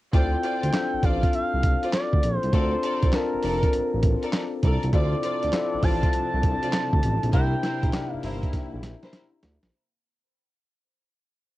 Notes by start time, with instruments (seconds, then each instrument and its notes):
0.13 analog synth bass D2, tine electric piano C4 E4 F4 A4, string section F4 C5 D5, analog synth lead G5, kick, closed hi-hat
0.43 string section F4 C5 D5, closed hi-hat
0.63 analog synth bass D2, closed hi-hat
0.73 tine electric piano C4 D4 F4 A4, snare, clap, closed hi-hat
0.93 analog synth bass A1
1.03 analog synth bass A1, string section F4 C5 D5, analog synth lead F5, kick, closed hi-hat
1.23 kick, closed hi-hat
1.33 analog synth bass C2, analog synth lead F5, closed hi-hat
1.53 analog synth bass C2
1.63 kick, closed hi-hat
1.83 string section F4 C5 D5, closed hi-hat
1.93 analog synth lead D5, snare, clap, closed hi-hat
2.13 analog synth bass D2, kick
2.23 analog synth bass A#1, closed hi-hat
2.37 analog synth lead C5
2.43 analog synth bass C2, closed hi-hat
2.53 analog synth bass D2, tine electric piano C4 D4 F4 A4, string section A4 A#4 D5, analog synth lead C5, kick, closed hi-hat
2.83 string section A4 A#4 D5, closed hi-hat
3.03 analog synth bass C2, kick, closed hi-hat
3.13 tine electric piano C4 D4 F4 A5, analog synth lead A#4, snare, clap, closed hi-hat
3.34 analog synth bass F1
3.43 analog synth bass F1, string section A4 A#4 D5, open hi-hat
3.63 kick, closed hi-hat
3.73 analog synth bass A1, closed hi-hat
3.94 analog synth bass A1
4.03 kick, closed hi-hat
4.23 string section A4 A#4 D5, closed hi-hat
4.33 snare, clap, closed hi-hat
4.63 analog synth bass C2, string section A4 A#4 D5, kick, closed hi-hat
4.83 analog synth bass C2, closed hi-hat
4.93 analog synth bass D2, string section C3 F3 D4 F4 C5 D5, tine electric piano C4 E4 F4 A4, analog synth lead D5, kick, closed hi-hat
5.23 string section F4 C5 D5, closed hi-hat
5.43 analog synth bass D2, closed hi-hat
5.53 tine electric piano C4 E4 F4 A4, snare, clap, closed hi-hat
5.74 analog synth bass A1
5.83 analog synth bass A1, string section F4 C5 D5, analog synth lead A5, kick, open hi-hat
6.03 kick, closed hi-hat
6.13 analog synth bass C2, analog synth lead A5, closed hi-hat
6.34 analog synth bass C2
6.43 kick, closed hi-hat
6.62 string section F4 C5 D5, closed hi-hat
6.73 snare, clap, closed hi-hat
6.93 analog synth bass D2, kick
7.03 analog synth bass A1, closed hi-hat
7.23 analog synth bass A#1, closed hi-hat
7.33 analog synth bass C2, string section A#3 E4 A#4 C5, tine electric piano D4 E4 G4 A#4, analog synth lead G5, kick, closed hi-hat
7.63 string section E4 A#4 C5, snare, closed hi-hat
7.83 analog synth bass A#1, kick, closed hi-hat
7.93 tine electric piano D4 D#4 G4 A#4, snare, clap, closed hi-hat
8.00 tine electric piano E4
8.12 analog synth bass G1, analog synth lead F5
8.23 analog synth bass G1, string section E4 A#4 C5, open hi-hat
8.43 kick, closed hi-hat
8.53 analog synth bass A#1, kick, snare, closed hi-hat
8.74 analog synth bass A#1
8.83 snare, closed hi-hat
9.03 string section E4 A#4 C5, snare, closed hi-hat
9.13 snare, closed hi-hat
9.43 analog synth bass D2, snare, closed hi-hat
9.63 analog synth bass A#1, snare, closed hi-hat